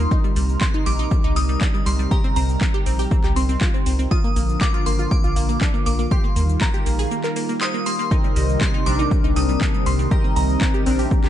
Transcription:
Already playing: A#3 A#4 C6
0.11 C3 G3 D#4, kick, shaker
0.24 G3, shaker
0.36 C2 G3, open hi-hat, shaker
0.49 shaker
0.61 G3 C6, kick, clap, shaker
0.74 D#4, shaker
0.86 A#1 G3 D6, open hi-hat, shaker
0.99 D#4, shaker
1.11 G3, kick, shaker
1.24 C2 D#4, shaker
1.36 C2 G3 D#6, open hi-hat, shaker
1.49 G3, shaker
1.61 D4, kick, clap, shaker
1.74 G3, shaker
1.86 C2 G3 C6, open hi-hat, shaker
1.99 G3, shaker
2.11 G4 A#5, kick, shaker
2.24 C4, shaker
2.36 C2 C4 A#5, open hi-hat, shaker
2.49 shaker
2.61 C4, kick, clap, shaker
2.74 G4, shaker
2.86 A#1 C4, open hi-hat, shaker
2.99 G4, open hi-hat, shaker
3.11 C4, kick, shaker
3.24 C2 G4, clap, shaker
3.36 C2 C4 C6, open hi-hat, shaker
3.49 C4, shaker
3.61 F4, kick, clap, shaker
3.74 C4, shaker
3.86 C2 C4, open hi-hat, shaker
3.99 C4, shaker
4.11 D3 F3 A#3 F4 D#6, kick, shaker
4.24 A#3, shaker
4.36 A#1 A#3, open hi-hat, shaker
4.49 shaker
4.61 A#3 D6, kick, clap, shaker
4.74 F4, shaker
4.86 G#1 A#3 C6, open hi-hat, shaker
4.99 F4, shaker
5.11 A#3 D6, kick, shaker
5.24 A#1 F4, shaker
5.36 A#1 A#3, open hi-hat, shaker
5.49 A#3, shaker
5.61 D4, kick, clap, shaker
5.74 A#3, shaker
5.86 A#1 A#3 D6, open hi-hat, shaker
5.99 A#3, shaker
6.11 D#3 G3 A#3 G4 C6, kick, shaker
6.24 A#3, shaker
6.36 D#2 A#3, open hi-hat, shaker
6.49 shaker
6.61 A#3 A#5, kick, clap, shaker
6.74 G4, shaker
6.86 A#1 A#3, open hi-hat, shaker
6.99 G#4, open hi-hat, shaker
7.11 A#3, shaker
7.24 A#4, clap, shaker
7.36 A#3, open hi-hat, shaker
7.49 A#3, shaker
7.61 C5 D#6, clap, shaker
7.74 A#3, shaker
7.86 A#3 C6, open hi-hat, shaker
7.99 A#3, shaker
8.11 C3 D#3 C4 D#4 A#4 D#5, kick, shaker
8.24 G3, shaker
8.36 C2 G3, open hi-hat, shaker
8.49 shaker
8.61 G3 C6, kick, clap, shaker
8.74 D#4, shaker
8.86 A#1 C3 G3 C4 D4 A#4 D6, open hi-hat, shaker
8.99 D#4, shaker
9.11 G3, kick, shaker
9.24 C2 D#4, shaker
9.36 C2 G3 D#6, open hi-hat, shaker
9.49 G3, shaker
9.61 D4, kick, clap, shaker
9.74 G3, shaker
9.86 C2 G3 C6, open hi-hat, shaker
9.99 G3, shaker
10.11 C3 C4 G4 A#4 D#5 A#5, kick, shaker
10.24 C4, shaker
10.36 C2 C4 A#5, open hi-hat, shaker
10.49 shaker
10.61 C4, kick, clap, shaker
10.74 G4, shaker
10.86 A#1 C3 C4 D4 A#4, open hi-hat, shaker
10.99 G4, open hi-hat, shaker
11.11 C4, kick, shaker
11.24 C2 G4, clap, shaker

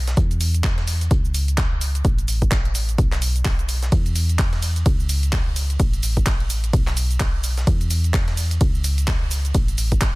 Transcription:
Already playing: B1
0.07 snare, closed hi-hat, shaker
0.17 E2, kick, closed hi-hat, shaker
0.31 closed hi-hat, shaker
0.41 closed hi-hat, open hi-hat, shaker
0.54 closed hi-hat, shaker
0.64 kick, snare, clap, closed hi-hat, shaker
0.78 snare, closed hi-hat
0.87 open hi-hat, shaker
1.01 closed hi-hat, shaker
1.11 C#2, kick, closed hi-hat, shaker
1.25 shaker
1.34 closed hi-hat, open hi-hat, shaker
1.48 closed hi-hat, shaker
1.58 kick, snare, clap, closed hi-hat, shaker
1.81 closed hi-hat, open hi-hat, shaker
1.95 closed hi-hat, shaker
2.05 A1, kick, closed hi-hat, shaker
2.19 closed hi-hat, shaker
2.28 closed hi-hat, open hi-hat, shaker
2.42 kick, closed hi-hat, shaker
2.51 kick, snare, clap, closed hi-hat, shaker
2.65 closed hi-hat
2.75 closed hi-hat, open hi-hat, shaker
2.89 closed hi-hat, shaker
2.98 B1, kick, closed hi-hat, shaker
3.12 snare, clap, shaker
3.22 closed hi-hat, open hi-hat, shaker
3.36 closed hi-hat, shaker
3.45 kick, snare, clap, closed hi-hat, open hi-hat, shaker
3.59 closed hi-hat, shaker
3.69 closed hi-hat, open hi-hat, shaker
3.82 snare, closed hi-hat, shaker
3.92 E2, kick, closed hi-hat, ride, shaker
4.06 closed hi-hat, shaker
4.16 closed hi-hat, open hi-hat, shaker
4.29 closed hi-hat, shaker
4.39 kick, snare, clap, closed hi-hat, ride, shaker
4.53 snare, closed hi-hat
4.62 open hi-hat, shaker
4.76 closed hi-hat, shaker
4.86 C#2, kick, closed hi-hat, ride, shaker
5.00 shaker
5.09 closed hi-hat, open hi-hat, shaker
5.23 closed hi-hat, shaker
5.33 kick, snare, clap, closed hi-hat, ride, shaker
5.56 closed hi-hat, open hi-hat, shaker
5.70 closed hi-hat, shaker
5.80 A1, kick, closed hi-hat, ride, shaker
5.93 closed hi-hat, shaker
6.03 closed hi-hat, open hi-hat, shaker
6.17 kick, closed hi-hat, shaker
6.26 kick, snare, clap, closed hi-hat, ride, shaker
6.40 closed hi-hat
6.50 closed hi-hat, open hi-hat, shaker
6.64 closed hi-hat, shaker
6.73 B1, kick, closed hi-hat, ride, shaker
6.87 snare, clap, shaker
6.97 closed hi-hat, open hi-hat, shaker
7.11 closed hi-hat, shaker
7.20 kick, snare, clap, closed hi-hat, ride, shaker
7.44 closed hi-hat, open hi-hat, shaker
7.58 snare, closed hi-hat, shaker
7.67 E2, kick, closed hi-hat, ride, shaker
7.81 closed hi-hat, shaker
7.91 closed hi-hat, open hi-hat, shaker
8.04 closed hi-hat, shaker
8.14 kick, snare, clap, closed hi-hat, ride, shaker
8.28 snare, closed hi-hat
8.37 open hi-hat, shaker
8.51 closed hi-hat, shaker
8.61 C#2, kick, closed hi-hat, ride, shaker
8.75 shaker
8.84 closed hi-hat, open hi-hat, shaker
8.98 closed hi-hat, shaker
9.08 kick, snare, clap, closed hi-hat, ride, shaker
9.31 closed hi-hat, open hi-hat, shaker
9.45 closed hi-hat, shaker
9.55 A1, kick, closed hi-hat, ride, shaker
9.68 closed hi-hat, shaker
9.78 closed hi-hat, open hi-hat, shaker
9.92 kick, closed hi-hat, shaker
10.01 kick, snare, clap, closed hi-hat, ride, shaker

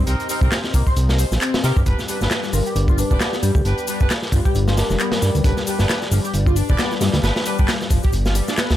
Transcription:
Already playing: C4 G4 C5 D#5
0.07 C2 C4 D#4 G4 A#4, closed hi-hat, shaker
0.20 closed hi-hat, shaker
0.29 C4 D#4 G4 A#4, closed hi-hat, open hi-hat, shaker
0.41 C2 C4 D#4 G4 A#4, kick, shaker
0.52 snare, clap, closed hi-hat, shaker
0.64 snare, shaker
0.74 C2 A#3, kick, closed hi-hat, open hi-hat, shaker
0.87 C5, kick, shaker
0.96 C2, closed hi-hat, shaker
1.09 A#4, snare, shaker
1.18 C5, closed hi-hat, open hi-hat, shaker
1.32 A#1, snare, shaker
1.41 C4, clap, closed hi-hat, shaker
1.54 snare, shaker
1.63 C3 C4 D#4 G4 A#4, snare, closed hi-hat, open hi-hat, shaker
1.77 G2, kick, shaker
1.86 G1 G3 B3 D4 G4 B4 D5, kick, closed hi-hat, shaker
1.99 snare, shaker
2.08 G3 B3 D4 G4 B4, closed hi-hat, open hi-hat, shaker
2.21 G1 B3 D4 G4 B4, snare, shaker
2.31 snare, clap, closed hi-hat, shaker
2.44 snare, shaker
2.53 G1 F3 A#4, open hi-hat, shaker
2.66 G4, closed hi-hat, shaker
2.75 G1, closed hi-hat, shaker
2.88 F4, kick, shaker
2.98 D4 B4, closed hi-hat, open hi-hat, shaker
3.11 F1 B3 D4 G4 B4 D5, kick, shaker
3.20 B3, snare, clap, closed hi-hat, shaker
3.33 snare, shaker
3.43 G2 G3 G4, closed hi-hat, open hi-hat, shaker
3.55 D2 G4, kick, shaker
3.65 G1 B3 D4 G4 B4, closed hi-hat, shaker
3.78 closed hi-hat, shaker
3.87 G3 B3 D4 G4 B4, closed hi-hat, open hi-hat, shaker
4.00 G1 B3 D4 G4 B4, kick, shaker
4.10 snare, clap, closed hi-hat, shaker
4.22 snare, shaker
4.32 G1 F3, kick, closed hi-hat, open hi-hat, shaker
4.45 G4, kick, shaker
4.55 G1 G4, closed hi-hat, shaker
4.68 F4, snare, shaker
4.77 D4 A#4, snare, closed hi-hat, open hi-hat, shaker
4.90 F1 A#4, snare, shaker
5.00 B3, clap, closed hi-hat, shaker
5.12 A#4, snare, closed hi-hat, shaker
5.22 G2 G3 A#4, snare, open hi-hat, shaker
5.35 D2, closed hi-hat, shaker
5.44 G1 B3 D4 G4 B4, kick, closed hi-hat, shaker
5.57 snare, shaker
5.67 G3 B3 D4 G4 B4, closed hi-hat, open hi-hat, shaker
5.79 G1 B3 D4 G4 B4, snare, shaker
5.89 snare, clap, closed hi-hat, shaker
6.02 snare, shaker
6.11 G1 F3, open hi-hat, shaker
6.24 G4, closed hi-hat, shaker
6.34 G1, closed hi-hat, shaker
6.46 F4, kick, shaker
6.56 D4, closed hi-hat, open hi-hat, shaker
6.69 F1 B3 D4 G4 D5, kick, shaker
6.78 B3, snare, clap, closed hi-hat, shaker
6.91 snare, shaker
7.01 G2 G3, snare, closed hi-hat, open hi-hat, shaker
7.13 D2, snare, closed hi-hat, shaker
7.23 G1 B3 D4 G4 B4, snare, closed hi-hat, shaker
7.36 snare, closed hi-hat, shaker
7.45 G3 B3 D4 G4 B4, closed hi-hat, open hi-hat, shaker
7.58 G1 B3 D4 G4 B4, kick, shaker
7.68 snare, clap, closed hi-hat, shaker
7.81 snare, shaker
7.90 G1 F3, kick, closed hi-hat, open hi-hat, shaker
8.03 G4, kick, shaker
8.13 G1, closed hi-hat, shaker
8.25 F4, snare, shaker
8.35 G3, closed hi-hat, open hi-hat, shaker
8.48 D4, snare, shaker
8.57 B3, snare, clap, closed hi-hat, shaker
8.70 D2, snare, closed hi-hat, shaker

